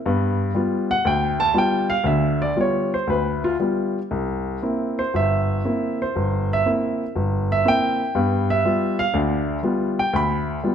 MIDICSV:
0, 0, Header, 1, 2, 480
1, 0, Start_track
1, 0, Tempo, 496689
1, 81, Time_signature, 4, 2, 24, 8
1, 2482, Tempo, 512821
1, 6322, Tempo, 497512
1, 10257, End_track
2, 0, Start_track
2, 0, Title_t, "Grand piano"
2, 0, Program_c, 0, 0
2, 55, Note_on_c, 0, 43, 68
2, 58, Note_on_c, 0, 59, 68
2, 482, Note_off_c, 0, 43, 0
2, 484, Note_off_c, 0, 59, 0
2, 527, Note_on_c, 0, 55, 49
2, 538, Note_on_c, 0, 59, 48
2, 541, Note_on_c, 0, 65, 58
2, 878, Note_on_c, 0, 78, 94
2, 886, Note_off_c, 0, 55, 0
2, 892, Note_off_c, 0, 59, 0
2, 893, Note_off_c, 0, 65, 0
2, 1013, Note_on_c, 0, 38, 70
2, 1026, Note_off_c, 0, 78, 0
2, 1033, Note_on_c, 0, 79, 81
2, 1352, Note_on_c, 0, 81, 103
2, 1355, Note_off_c, 0, 79, 0
2, 1441, Note_off_c, 0, 38, 0
2, 1489, Note_on_c, 0, 55, 53
2, 1491, Note_on_c, 0, 59, 48
2, 1493, Note_on_c, 0, 65, 61
2, 1503, Note_off_c, 0, 81, 0
2, 1530, Note_on_c, 0, 79, 83
2, 1833, Note_on_c, 0, 77, 92
2, 1844, Note_off_c, 0, 79, 0
2, 1848, Note_off_c, 0, 55, 0
2, 1849, Note_off_c, 0, 59, 0
2, 1850, Note_off_c, 0, 65, 0
2, 1967, Note_on_c, 0, 38, 69
2, 1978, Note_on_c, 0, 50, 64
2, 1984, Note_off_c, 0, 77, 0
2, 1995, Note_on_c, 0, 76, 76
2, 2320, Note_off_c, 0, 76, 0
2, 2336, Note_on_c, 0, 74, 82
2, 2405, Note_off_c, 0, 38, 0
2, 2410, Note_off_c, 0, 50, 0
2, 2473, Note_on_c, 0, 59, 43
2, 2474, Note_on_c, 0, 55, 45
2, 2479, Note_on_c, 0, 65, 53
2, 2481, Note_off_c, 0, 74, 0
2, 2518, Note_on_c, 0, 73, 71
2, 2822, Note_off_c, 0, 73, 0
2, 2824, Note_off_c, 0, 55, 0
2, 2824, Note_off_c, 0, 59, 0
2, 2827, Note_off_c, 0, 65, 0
2, 2829, Note_on_c, 0, 72, 74
2, 2953, Note_on_c, 0, 38, 61
2, 2967, Note_off_c, 0, 72, 0
2, 2978, Note_on_c, 0, 71, 68
2, 3297, Note_off_c, 0, 71, 0
2, 3300, Note_on_c, 0, 65, 80
2, 3383, Note_off_c, 0, 38, 0
2, 3391, Note_off_c, 0, 65, 0
2, 3445, Note_on_c, 0, 55, 48
2, 3449, Note_on_c, 0, 59, 41
2, 3450, Note_on_c, 0, 65, 51
2, 3800, Note_off_c, 0, 55, 0
2, 3802, Note_off_c, 0, 59, 0
2, 3803, Note_off_c, 0, 65, 0
2, 3924, Note_on_c, 0, 36, 58
2, 4349, Note_off_c, 0, 36, 0
2, 4407, Note_on_c, 0, 58, 46
2, 4411, Note_on_c, 0, 60, 41
2, 4413, Note_on_c, 0, 64, 50
2, 4747, Note_on_c, 0, 72, 74
2, 4758, Note_off_c, 0, 58, 0
2, 4760, Note_off_c, 0, 60, 0
2, 4761, Note_off_c, 0, 64, 0
2, 4890, Note_on_c, 0, 31, 65
2, 4891, Note_off_c, 0, 72, 0
2, 4909, Note_on_c, 0, 76, 85
2, 5307, Note_off_c, 0, 31, 0
2, 5363, Note_on_c, 0, 60, 44
2, 5365, Note_on_c, 0, 58, 49
2, 5368, Note_on_c, 0, 64, 52
2, 5668, Note_off_c, 0, 76, 0
2, 5710, Note_off_c, 0, 60, 0
2, 5711, Note_off_c, 0, 58, 0
2, 5712, Note_off_c, 0, 64, 0
2, 5712, Note_on_c, 0, 72, 63
2, 5841, Note_on_c, 0, 31, 65
2, 6148, Note_off_c, 0, 72, 0
2, 6193, Note_on_c, 0, 76, 86
2, 6257, Note_off_c, 0, 31, 0
2, 6311, Note_on_c, 0, 58, 50
2, 6312, Note_on_c, 0, 60, 44
2, 6316, Note_on_c, 0, 64, 55
2, 6325, Note_off_c, 0, 76, 0
2, 6664, Note_off_c, 0, 58, 0
2, 6665, Note_off_c, 0, 60, 0
2, 6667, Note_off_c, 0, 64, 0
2, 6790, Note_on_c, 0, 31, 69
2, 7142, Note_on_c, 0, 76, 93
2, 7214, Note_off_c, 0, 31, 0
2, 7266, Note_on_c, 0, 60, 49
2, 7268, Note_on_c, 0, 58, 53
2, 7271, Note_on_c, 0, 64, 54
2, 7282, Note_off_c, 0, 76, 0
2, 7299, Note_on_c, 0, 79, 98
2, 7617, Note_off_c, 0, 60, 0
2, 7618, Note_off_c, 0, 58, 0
2, 7620, Note_off_c, 0, 64, 0
2, 7748, Note_on_c, 0, 59, 70
2, 7750, Note_on_c, 0, 43, 71
2, 8059, Note_off_c, 0, 79, 0
2, 8090, Note_on_c, 0, 76, 89
2, 8171, Note_off_c, 0, 59, 0
2, 8172, Note_off_c, 0, 43, 0
2, 8232, Note_on_c, 0, 55, 50
2, 8233, Note_on_c, 0, 59, 46
2, 8237, Note_on_c, 0, 65, 56
2, 8535, Note_off_c, 0, 76, 0
2, 8561, Note_on_c, 0, 77, 91
2, 8579, Note_off_c, 0, 55, 0
2, 8580, Note_off_c, 0, 59, 0
2, 8582, Note_off_c, 0, 65, 0
2, 8700, Note_on_c, 0, 50, 74
2, 8701, Note_on_c, 0, 38, 72
2, 8707, Note_off_c, 0, 77, 0
2, 9126, Note_off_c, 0, 38, 0
2, 9126, Note_off_c, 0, 50, 0
2, 9176, Note_on_c, 0, 55, 50
2, 9181, Note_on_c, 0, 59, 50
2, 9186, Note_on_c, 0, 65, 57
2, 9528, Note_on_c, 0, 79, 80
2, 9535, Note_off_c, 0, 55, 0
2, 9538, Note_off_c, 0, 59, 0
2, 9540, Note_off_c, 0, 65, 0
2, 9660, Note_on_c, 0, 38, 69
2, 9673, Note_off_c, 0, 79, 0
2, 9688, Note_on_c, 0, 83, 82
2, 10087, Note_off_c, 0, 38, 0
2, 10147, Note_on_c, 0, 55, 50
2, 10155, Note_on_c, 0, 59, 47
2, 10158, Note_on_c, 0, 65, 53
2, 10257, Note_off_c, 0, 55, 0
2, 10257, Note_off_c, 0, 59, 0
2, 10257, Note_off_c, 0, 65, 0
2, 10257, Note_off_c, 0, 83, 0
2, 10257, End_track
0, 0, End_of_file